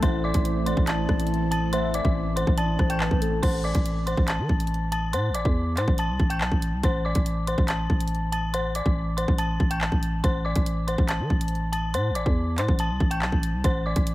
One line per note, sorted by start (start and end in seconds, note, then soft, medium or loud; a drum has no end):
0.00 0.33 A1 loud
0.00 3.40 E3 medium
0.00 3.38 A3 medium
0.00 3.40 A3 medium
0.00 3.39 C4 medium
0.00 3.39 E4 medium
0.00 0.62 C5 loud
0.00 0.20 C5 medium
0.00 0.19 C6 loud
0.00 kick loud
0.00 closed hi-hat medium
0.05 3.40 C5 medium
0.24 0.64 D5 medium
0.24 0.64 D6 medium
0.34 0.75 A1 loud
0.34 kick loud
0.34 closed hi-hat medium
0.45 closed hi-hat medium
0.66 0.84 C5 medium
0.66 1.27 D5 medium
0.66 0.83 C6 medium
0.66 closed hi-hat medium
0.77 1.08 A1 loud
0.77 kick loud
0.87 1.48 A5 loud
0.87 1.48 A6 medium
0.87 clap loud
0.87 closed hi-hat medium
1.09 2.01 A1 loud
1.09 kick loud
1.09 cross-stick medium
1.20 closed hi-hat medium
1.27 closed hi-hat medium
1.34 closed hi-hat soft
1.51 1.68 A5 medium
1.51 1.69 A6 medium
1.51 closed hi-hat medium
1.73 1.90 C5 medium
1.73 2.13 E5 loud
1.73 1.90 C6 loud
1.73 closed hi-hat medium
1.94 2.35 D5 medium
1.94 2.34 D6 medium
1.94 closed hi-hat medium
2.05 2.46 A1 loud
2.05 kick loud
2.36 2.54 C5 medium
2.36 2.53 C6 medium
2.36 closed hi-hat medium
2.47 2.78 A1 loud
2.47 kick loud
2.58 2.78 D5 medium
2.58 2.88 A5 loud
2.58 2.88 A6 medium
2.58 closed hi-hat medium
2.79 3.10 A1 loud
2.79 2.99 C5 medium
2.79 kick loud
2.79 cross-stick medium
2.90 2.98 G5 medium
2.90 2.99 G6 medium
2.90 closed hi-hat medium
3.00 3.21 B4 medium
3.00 3.40 A5 medium
3.00 3.41 A6 medium
3.00 clap loud
3.11 3.42 A1 loud
3.11 kick medium
3.22 3.42 A4 medium
3.22 closed hi-hat medium
3.43 3.74 A1 loud
3.43 3.60 C5 medium
3.43 3.60 C6 loud
3.43 kick loud
3.43 closed hi-hat medium
3.43 crash medium
3.64 4.04 D5 medium
3.64 4.04 D6 medium
3.75 4.16 A1 loud
3.75 kick loud
3.75 closed hi-hat medium
3.86 closed hi-hat medium
4.07 4.24 C5 medium
4.07 4.24 C6 medium
4.07 closed hi-hat medium
4.17 4.40 A1 loud
4.17 kick loud
4.28 4.88 A5 medium
4.28 4.89 A6 medium
4.28 clap loud
4.28 closed hi-hat medium
4.39 4.49 E3 loud
4.49 5.15 A1 loud
4.49 kick medium
4.60 closed hi-hat medium
4.67 closed hi-hat medium
4.74 closed hi-hat soft
4.92 5.09 A5 medium
4.92 5.09 A6 medium
4.92 closed hi-hat medium
5.13 5.31 A2 loud
5.13 5.31 C5 medium
5.13 5.30 C6 loud
5.13 closed hi-hat medium
5.29 5.44 A1 loud
5.34 5.75 D5 medium
5.34 5.74 D6 medium
5.34 closed hi-hat medium
5.45 5.79 E2 loud
5.45 kick loud
5.77 5.87 A2 loud
5.77 5.95 C5 medium
5.77 5.94 C6 medium
5.77 clap medium
5.77 closed hi-hat medium
5.88 6.11 A1 loud
5.88 kick loud
5.98 6.29 A5 loud
5.98 6.29 A6 medium
5.98 closed hi-hat medium
6.09 6.19 C2 loud
6.20 6.42 A1 loud
6.20 kick loud
6.30 6.38 G5 medium
6.30 6.39 G6 medium
6.30 closed hi-hat medium
6.41 6.51 B1 loud
6.41 6.81 A5 medium
6.41 6.81 A6 medium
6.41 clap loud
6.52 6.74 A1 loud
6.52 kick medium
6.62 closed hi-hat medium
6.73 6.83 C2 loud
6.83 7.14 A1 loud
6.83 7.01 C5 medium
6.83 7.00 C6 loud
6.83 kick loud
6.83 closed hi-hat medium
7.05 7.45 D5 medium
7.05 7.45 D6 medium
7.15 7.56 A1 loud
7.15 kick loud
7.15 closed hi-hat medium
7.26 closed hi-hat medium
7.47 7.65 C5 medium
7.47 7.64 C6 medium
7.47 closed hi-hat medium
7.58 7.89 A1 loud
7.58 kick loud
7.68 8.29 A5 medium
7.68 8.29 A6 medium
7.68 clap loud
7.68 closed hi-hat medium
7.90 8.82 A1 loud
7.90 kick loud
8.00 closed hi-hat medium
8.08 closed hi-hat medium
8.15 closed hi-hat soft
8.32 8.49 A5 medium
8.32 8.50 A6 medium
8.32 closed hi-hat medium
8.54 8.71 C5 medium
8.54 8.70 C6 loud
8.54 closed hi-hat medium
8.75 9.15 D5 medium
8.75 9.15 D6 medium
8.75 closed hi-hat medium
8.86 9.26 A1 loud
8.86 kick loud
9.17 9.35 C5 medium
9.17 9.34 C6 medium
9.17 closed hi-hat medium
9.28 9.59 A1 loud
9.28 kick loud
9.38 9.69 A5 medium
9.38 9.69 A6 medium
9.38 closed hi-hat medium
9.60 9.91 A1 loud
9.60 kick medium
9.71 9.79 G5 medium
9.71 9.79 G6 medium
9.71 closed hi-hat medium
9.81 10.21 A5 medium
9.81 10.22 A6 medium
9.81 clap loud
9.92 10.23 A1 loud
9.92 kick medium
10.03 closed hi-hat medium
10.24 10.54 A1 loud
10.24 10.41 C5 medium
10.24 10.41 C6 loud
10.24 kick loud
10.24 closed hi-hat medium
10.45 10.85 D5 medium
10.45 10.85 D6 medium
10.56 10.97 A1 loud
10.56 kick loud
10.56 closed hi-hat medium
10.66 closed hi-hat medium
10.87 11.05 C5 medium
10.87 11.04 C6 medium
10.87 closed hi-hat medium
10.98 11.21 A1 loud
10.98 kick loud
11.09 11.69 A5 medium
11.09 11.69 A6 medium
11.09 clap loud
11.09 closed hi-hat medium
11.20 11.30 E3 loud
11.30 11.96 A1 loud
11.30 kick loud
11.41 closed hi-hat medium
11.48 closed hi-hat medium
11.55 closed hi-hat soft
11.72 11.89 A5 medium
11.72 11.90 A6 medium
11.72 closed hi-hat medium
11.94 12.11 A2 loud
11.94 12.11 C5 medium
11.94 12.11 C6 loud
11.94 closed hi-hat medium
12.10 12.25 A1 loud
12.15 12.56 D5 medium
12.15 12.55 D6 medium
12.15 closed hi-hat medium
12.26 12.59 E2 loud
12.26 kick medium
12.58 12.68 A2 loud
12.58 12.75 C5 medium
12.58 12.75 C6 medium
12.58 clap medium
12.58 closed hi-hat medium
12.68 12.91 A1 loud
12.68 kick loud
12.79 13.09 A5 loud
12.79 13.10 A6 medium
12.79 closed hi-hat medium
12.90 13.00 C2 loud
13.00 13.23 A1 loud
13.00 kick medium
13.11 13.19 G5 medium
13.11 13.20 G6 medium
13.11 closed hi-hat medium
13.22 13.32 B1 loud
13.22 13.62 A5 medium
13.22 13.62 A6 medium
13.22 clap loud
13.32 13.55 A1 loud
13.32 kick medium
13.43 closed hi-hat medium
13.54 13.64 C2 loud
13.64 13.95 A1 loud
13.64 13.82 C5 medium
13.64 13.81 C6 loud
13.64 kick loud
13.64 closed hi-hat medium
13.86 14.15 D5 medium
13.86 14.15 D6 medium
13.96 14.15 A1 loud
13.96 kick loud
13.96 closed hi-hat medium
14.07 closed hi-hat medium